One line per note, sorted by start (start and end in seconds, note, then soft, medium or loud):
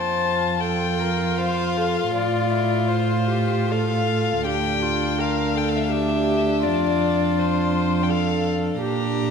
0.00 2.08 F2 soft
0.00 4.46 F4 soft
0.00 0.56 C5 soft
0.00 0.61 A5 soft
0.60 1.01 A4 soft
0.60 1.39 G5 soft
0.99 1.40 A#4 soft
1.38 1.78 C5 soft
1.38 2.13 F5 medium
1.77 2.13 A4 soft
2.12 4.41 A2 soft
2.12 2.52 F4 soft
2.12 2.89 D5 soft
2.50 2.90 E4 soft
2.87 3.29 F4 soft
2.87 3.73 C5 soft
3.29 3.72 G4 soft
3.70 4.46 A4 soft
3.70 4.45 F5 soft
4.44 6.65 D2 soft
4.44 8.80 D4 soft
4.44 4.84 G4 soft
4.44 5.21 G5 medium
4.82 5.20 F4 soft
5.19 5.57 A#4 soft
5.19 5.59 F5 soft
5.55 5.91 A4 soft
5.55 5.70 G5 soft
5.69 5.78 F5 soft
5.76 5.85 E5 soft
5.83 5.92 F5 soft
5.91 6.62 G4 soft
5.91 6.64 E5 medium
6.63 8.80 F2 soft
6.63 8.11 F4 soft
6.63 7.40 D5 medium
7.38 8.04 C5 soft
8.03 8.11 G5 soft
8.09 8.81 A4 soft
8.09 8.45 F5 medium
8.81 9.30 A#2 soft
8.81 9.30 D4 soft
8.81 9.30 G4 soft
8.81 9.30 A#5 medium